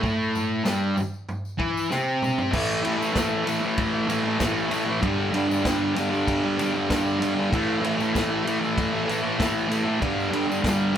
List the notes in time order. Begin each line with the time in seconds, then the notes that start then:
0.02 A2 A3, kick, floor tom, tambourine
0.35 floor tom, tambourine
0.64 G2 G3, snare, floor tom, tambourine
0.97 floor tom, tambourine
1.14 tambourine
1.29 floor tom, tambourine
1.45 tambourine
1.58 E3 E4, kick, floor tom
1.77 tambourine
1.90 C3 C4, snare, tambourine
2.22 mid tom, tambourine
2.38 floor tom, tambourine
2.51 A2 E3 A3, kick, crash
2.83 A2 E3, ride
2.87 A3
2.98 A3
3.02 E3, tambourine
3.13 A2 E3, kick, snare, ride, tambourine
3.18 A3
3.44 A2 E3, ride
3.48 A3, tambourine
3.61 A3, tambourine
3.65 E3
3.78 kick, ride, tambourine
4.08 A2 E3 A3, ride, tambourine
4.24 A3
4.28 E3
4.39 A2 E3, kick, snare, ride, tambourine
4.44 A3
4.58 tambourine
4.70 A2 E3, ride, tambourine
4.74 A3
4.85 A3
4.90 E3
5.01 G2 D3, kick, ride
5.05 G3
5.32 G2 D3, ride
5.37 G3
5.48 D3 G3, tambourine
5.62 G2 D3, kick, snare, ride, tambourine
5.67 G3
5.95 G2 D3 G3, ride, tambourine
6.10 D3 G3
6.14 tambourine
6.28 kick, ride, tambourine
6.57 G2 D3, ride, tambourine
6.61 G3
6.72 G3
6.77 D3
6.88 G2 D3 G3, kick, snare, ride
6.92 tambourine
7.07 tambourine
7.19 G2 D3, ride
7.23 G3, tambourine
7.35 G3
7.39 D3
7.51 A2 E3, kick, ride
7.55 A3
7.81 A2 E3, ride
7.86 A3
7.97 A3, tambourine
8.01 E3
8.13 A2 E3 A3, kick, snare, ride, tambourine
8.44 A2 E3, ride
8.48 A3, tambourine
8.60 A3, tambourine
8.65 E3
8.78 kick, ride, tambourine
9.06 A2 E3, ride
9.11 A3, tambourine
9.22 A3
9.26 E3
9.37 A2 E3, kick, snare, ride
9.41 A3, tambourine
9.68 A2 E3, ride
9.72 A3, tambourine
9.84 A3
9.88 E3
10.00 G2 D3, kick, ride
10.04 G3
10.20 tambourine
10.30 G2 D3, ride
10.35 G3
10.47 G3
10.51 D3, tambourine
10.62 G2 D3, kick, snare, ride
10.67 G3, tambourine
10.93 G2